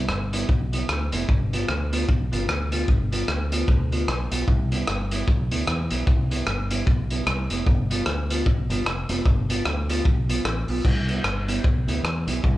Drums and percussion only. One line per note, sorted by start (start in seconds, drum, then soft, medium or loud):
0.09 cross-stick loud
0.33 closed hi-hat loud
0.49 kick loud
0.73 closed hi-hat medium
0.89 cross-stick loud
1.12 closed hi-hat loud
1.29 kick loud
1.53 closed hi-hat medium
1.69 cross-stick medium
1.93 closed hi-hat loud
2.09 kick loud
2.33 closed hi-hat medium
2.49 cross-stick loud
2.72 closed hi-hat loud
2.88 kick loud
3.13 closed hi-hat medium
3.28 cross-stick loud
3.52 closed hi-hat medium
3.68 kick loud
3.92 closed hi-hat medium
4.08 cross-stick loud
4.32 closed hi-hat medium
4.48 kick loud
4.72 closed hi-hat medium
4.87 cross-stick loud
5.11 closed hi-hat loud
5.28 kick loud
5.51 closed hi-hat medium
5.67 cross-stick loud
5.91 closed hi-hat medium
6.07 kick loud
6.31 closed hi-hat medium
6.47 cross-stick loud
6.71 closed hi-hat loud
6.87 kick loud
7.11 closed hi-hat medium
7.27 cross-stick loud
7.50 closed hi-hat medium
7.67 kick loud
7.91 closed hi-hat loud
8.06 cross-stick loud
8.30 closed hi-hat medium
8.46 kick loud
8.70 closed hi-hat medium
8.86 cross-stick loud
9.09 closed hi-hat medium
9.26 kick loud
9.50 closed hi-hat medium
9.65 cross-stick loud
9.89 closed hi-hat loud
10.05 kick loud
10.29 closed hi-hat medium
10.45 cross-stick loud
10.68 open hi-hat medium
10.85 kick loud
10.85 crash medium
11.09 closed hi-hat medium
11.24 cross-stick loud
11.48 closed hi-hat medium
11.64 kick loud
11.88 closed hi-hat medium
12.05 cross-stick loud
12.28 closed hi-hat loud
12.44 kick loud